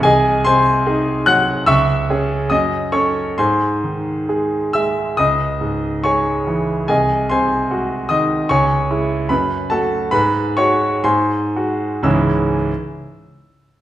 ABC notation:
X:1
M:2/4
L:1/8
Q:1/4=70
K:C#m
V:1 name="Grand piano"
[Gdg] [^Bg^b]2 [ff'] | [ec'e']2 [dd'] [cc'] | [^Bg^b]2 z [ee'] | [dd']2 [cgc']2 |
[Gdg] [^Bg^b]2 [dd'] | [cgc']2 [Bb] [Aa] | [Bb] [cc'] [^Bg^b]2 | [C,,G,,E,G,CEe'] z3 |]
V:2 name="Grand piano" clef=bass
^B,,, ^B,, [DG] F, | C,, [CG] F,, [CA] | G,, D, [G,G] G, | C,, G,, [G,G] E, |
^B,,, ^B,, [G,F] D, | C,, [G,E] F,, [A,F] | G,, [G,F] G,, [G,F] | z4 |]